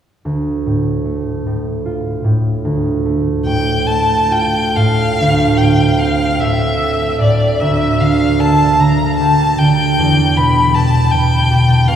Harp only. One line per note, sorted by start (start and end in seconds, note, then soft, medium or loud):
0.25 2.64 D2 soft
0.66 1.45 A2 soft
1.05 3.05 A3 soft
1.46 2.23 A2 soft
1.85 4.30 F4 soft
2.24 3.45 A2 soft
2.65 5.19 D2 soft
3.06 3.87 A3 soft
3.47 4.75 A2 soft
3.88 7.64 A3 soft
4.31 8.21 F4 soft
4.77 5.22 A2 soft
5.20 7.60 D2 soft
5.60 6.40 A2 soft
6.00 7.64 C4 soft
6.41 7.20 A2 soft
6.81 7.64 A4 soft
7.21 7.63 A2 soft
7.61 10.01 D2 soft
8.00 8.78 D3 soft
8.39 10.01 A#3 soft
8.80 9.58 D3 soft
9.19 11.49 G4 soft
9.60 10.01 D3 soft
9.99 11.96 E2 soft
10.38 11.12 B2 soft
10.75 11.96 B3 soft
11.13 11.87 B2 soft
11.51 11.96 G4 soft
11.88 11.96 B2 soft